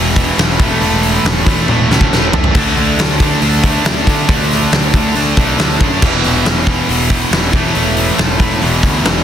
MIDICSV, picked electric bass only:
0, 0, Header, 1, 2, 480
1, 0, Start_track
1, 0, Tempo, 433213
1, 907, Time_signature, 4, 2, 24, 8
1, 10235, End_track
2, 0, Start_track
2, 0, Title_t, "Picked electric bass"
2, 0, Program_c, 0, 34
2, 0, Note_on_c, 0, 28, 88
2, 338, Note_off_c, 0, 28, 0
2, 416, Note_on_c, 0, 28, 88
2, 620, Note_off_c, 0, 28, 0
2, 662, Note_on_c, 0, 28, 101
2, 864, Note_off_c, 0, 28, 0
2, 902, Note_on_c, 0, 28, 102
2, 1304, Note_off_c, 0, 28, 0
2, 1379, Note_on_c, 0, 28, 101
2, 1583, Note_off_c, 0, 28, 0
2, 1622, Note_on_c, 0, 28, 99
2, 1825, Note_off_c, 0, 28, 0
2, 1855, Note_on_c, 0, 28, 86
2, 2061, Note_off_c, 0, 28, 0
2, 2098, Note_on_c, 0, 38, 80
2, 2303, Note_off_c, 0, 38, 0
2, 2333, Note_on_c, 0, 28, 88
2, 2540, Note_off_c, 0, 28, 0
2, 2580, Note_on_c, 0, 40, 96
2, 2784, Note_off_c, 0, 40, 0
2, 2824, Note_on_c, 0, 38, 92
2, 3027, Note_off_c, 0, 38, 0
2, 3059, Note_on_c, 0, 38, 103
2, 3264, Note_off_c, 0, 38, 0
2, 3301, Note_on_c, 0, 38, 102
2, 3704, Note_off_c, 0, 38, 0
2, 3786, Note_on_c, 0, 38, 86
2, 4187, Note_off_c, 0, 38, 0
2, 4261, Note_on_c, 0, 38, 88
2, 4465, Note_off_c, 0, 38, 0
2, 4513, Note_on_c, 0, 50, 93
2, 4712, Note_off_c, 0, 50, 0
2, 4749, Note_on_c, 0, 38, 95
2, 5149, Note_off_c, 0, 38, 0
2, 5232, Note_on_c, 0, 38, 93
2, 5431, Note_off_c, 0, 38, 0
2, 5469, Note_on_c, 0, 38, 105
2, 5669, Note_off_c, 0, 38, 0
2, 5712, Note_on_c, 0, 38, 89
2, 5911, Note_off_c, 0, 38, 0
2, 5948, Note_on_c, 0, 35, 82
2, 6149, Note_off_c, 0, 35, 0
2, 6191, Note_on_c, 0, 38, 93
2, 6390, Note_off_c, 0, 38, 0
2, 6431, Note_on_c, 0, 42, 93
2, 6630, Note_off_c, 0, 42, 0
2, 6675, Note_on_c, 0, 28, 110
2, 6872, Note_off_c, 0, 28, 0
2, 6912, Note_on_c, 0, 28, 93
2, 7110, Note_off_c, 0, 28, 0
2, 7145, Note_on_c, 0, 28, 106
2, 7545, Note_off_c, 0, 28, 0
2, 7625, Note_on_c, 0, 28, 86
2, 8024, Note_off_c, 0, 28, 0
2, 8098, Note_on_c, 0, 28, 98
2, 8301, Note_off_c, 0, 28, 0
2, 8348, Note_on_c, 0, 28, 106
2, 8547, Note_off_c, 0, 28, 0
2, 8581, Note_on_c, 0, 28, 107
2, 8982, Note_off_c, 0, 28, 0
2, 9068, Note_on_c, 0, 28, 95
2, 9267, Note_off_c, 0, 28, 0
2, 9303, Note_on_c, 0, 28, 101
2, 9503, Note_off_c, 0, 28, 0
2, 9544, Note_on_c, 0, 28, 82
2, 9744, Note_off_c, 0, 28, 0
2, 9788, Note_on_c, 0, 38, 81
2, 9986, Note_off_c, 0, 38, 0
2, 10009, Note_on_c, 0, 28, 98
2, 10215, Note_off_c, 0, 28, 0
2, 10235, End_track
0, 0, End_of_file